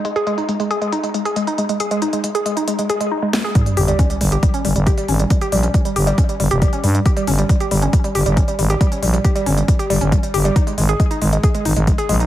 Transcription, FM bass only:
\new Staff \with { instrumentName = "FM bass" } { \clef bass \time 4/4 \tempo 4 = 137 r1 | r1 | r8 g,,16 r8. g,,16 r8. g,,16 g,,16 r8 aes,,16 r16 | r8 bes,,16 r8. g,,16 r8. g,,16 f,,16 r8 g,16 r16 |
r8 g,,16 r8. g,,16 r8. g,,16 g,,16 r8 aes,,16 r16 | r8 bes,,16 r8. g,,16 r8. g,,16 g,,16 r8 g,,16 r16 | r8 aes,,16 r8. aes,,16 r8. aes,,16 aes,,16 r8 bes,,16 r16 | }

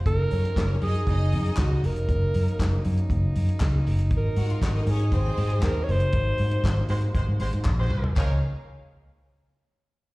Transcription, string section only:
\new Staff \with { instrumentName = "String section" } { \time 4/4 \key ges \lydian \tempo 4 = 118 r8 <des' des''>16 <c' c''>16 <des' des''>16 <des' des''>16 <ees' ees''>8 <ees' ees''>4. r8 | r1 | r8 <ges' ges''>16 <f' f''>16 <ges' ges''>16 <ees' ees''>16 <des' des''>8 <c' c''>4. r8 | r1 |
<bes aes' f''>8 r2. r8 | }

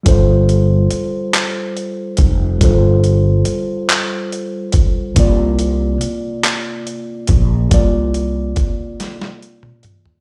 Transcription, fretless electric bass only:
\new Staff \with { instrumentName = "Fretless electric bass" } { \clef bass \time 6/8 \key g \minor \tempo 4. = 47 g,,4 r4. f,,8 | g,,4 r2 | c,4 r4. bes,,8 | c,4 r2 | }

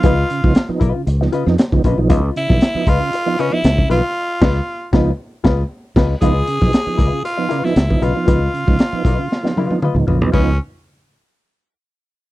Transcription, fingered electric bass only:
\new Staff \with { instrumentName = "Fingered electric bass" } { \clef bass \time 4/4 \key des \mixolydian \tempo 4 = 117 des,8 r16 des,16 r8 ces,16 r16 des,8 r16 f,16 r16 des,16 bes,,16 ces,16 | des,8 r16 ces,16 r8 des,16 r4 r16 des,8 ces,16 r16 | r8 des,8 r8 des,8 r8 des,8 r8 des,8 | des,8 r16 ces,16 r8 des,16 r4 r16 des,8 ces,16 r16 |
des,8 r16 des,16 r8 ces,16 r4. des,16 bes,,16 ces,16 | des,8 r2. r8 | }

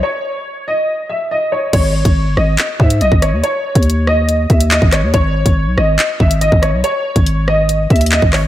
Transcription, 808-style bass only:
\new Staff \with { instrumentName = "808-style bass" } { \clef bass \time 4/4 \key gis \minor \tempo 4 = 141 r1 | gis,,8. gis,,8 g,,16 gis,,8 r8 gis,8 b,,16 gis,,8 dis,16 | r8. dis,4.~ dis,16 dis,8. gis,,8 dis,16 | gis,,8. gis,,8 b,,16 gis,,8 r8 gis,,8. gis,,8 b,,16 |
r8. gis,,4.~ gis,,16 dis,8. gis,,8. | }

